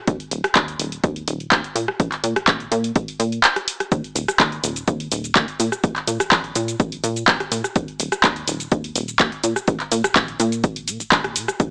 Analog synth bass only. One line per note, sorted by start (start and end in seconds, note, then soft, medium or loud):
0.08 0.18 D#2 loud
0.32 0.42 D#1 medium
0.56 0.76 D#2 medium
0.80 1.00 D#1 loud
1.04 1.24 D#2 loud
1.28 1.48 D#1 loud
1.52 1.62 D#2 loud
1.76 1.86 A#2 medium
2.00 2.10 A#1 loud
2.24 2.34 A#2 medium
2.36 2.45 A#1 soft
2.48 2.68 A#1 medium
2.72 2.92 A#2 loud
2.96 3.06 A#1 medium
3.20 3.40 A#2 medium
3.92 4.02 D#2 loud
4.16 4.26 D#1 medium
4.40 4.60 D#2 medium
4.64 4.84 D#1 loud
4.88 5.08 D#2 medium
5.12 5.32 D#1 loud
5.36 5.46 D#2 loud
5.60 5.70 A#2 medium
5.84 5.94 A#1 loud
6.08 6.18 A#2 medium
6.20 6.29 A#1 soft
6.32 6.52 A#1 medium
6.56 6.76 A#2 loud
6.80 7.00 A#1 loud
7.04 7.24 A#2 loud
7.28 7.38 A#1 loud
7.52 7.62 A#2 medium
7.76 7.86 D#2 loud
8.00 8.10 D#1 medium
8.24 8.44 D#2 medium
8.48 8.68 D#1 loud
8.72 8.92 D#2 loud
8.96 9.16 D#1 loud
9.20 9.30 D#2 loud
9.44 9.54 A#2 medium
9.68 9.78 A#1 loud
9.92 10.02 A#2 medium
10.04 10.13 A#1 soft
10.16 10.36 A#1 medium
10.40 10.65 A#2 loud
10.64 10.89 A#1 medium
10.88 10.98 A#2 loud
11.00 11.09 A#1 soft
11.12 11.37 A#1 medium
11.36 11.46 A#2 medium
11.60 11.70 D#2 loud